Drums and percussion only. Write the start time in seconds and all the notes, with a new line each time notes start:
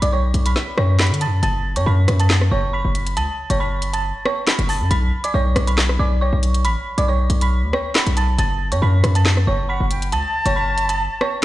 0.02 closed hi-hat
0.34 closed hi-hat
0.46 closed hi-hat
0.56 snare
0.78 cross-stick
0.99 snare, clap, closed hi-hat
1.07 closed hi-hat
1.14 closed hi-hat
1.21 closed hi-hat
1.43 closed hi-hat
1.76 closed hi-hat
2.08 cross-stick, closed hi-hat
2.20 closed hi-hat
2.30 snare, clap
2.41 cross-stick
2.95 closed hi-hat
3.07 closed hi-hat
3.17 closed hi-hat
3.50 closed hi-hat
3.82 closed hi-hat
3.94 closed hi-hat
4.25 cross-stick
4.47 snare, clap, closed hi-hat
4.59 closed hi-hat
4.69 open hi-hat
4.91 closed hi-hat
5.24 closed hi-hat
5.56 cross-stick, closed hi-hat
5.67 closed hi-hat
5.78 snare, clap
5.89 cross-stick
6.43 closed hi-hat
6.54 closed hi-hat
6.65 closed hi-hat
6.98 closed hi-hat
7.30 closed hi-hat
7.41 closed hi-hat
7.73 cross-stick
7.95 snare, clap, closed hi-hat
8.07 closed hi-hat
8.17 closed hi-hat
8.39 closed hi-hat
8.72 closed hi-hat
9.04 cross-stick, closed hi-hat
9.15 closed hi-hat
9.25 snare, clap
9.37 cross-stick
9.91 closed hi-hat
10.02 closed hi-hat
10.12 closed hi-hat
10.46 closed hi-hat
10.78 closed hi-hat
10.89 closed hi-hat
11.21 cross-stick